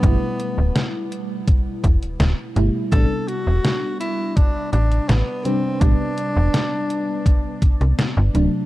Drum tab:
HH |x-x-x-x-x-xxx-x-|x-x-x-x-x-xxx-x-|x-x-x-x-x-xxx-x-|
SD |----o-------o---|----o-------o---|----o-------o---|
BD |o-------o-o-----|o-------o-------|o-------o-o-----|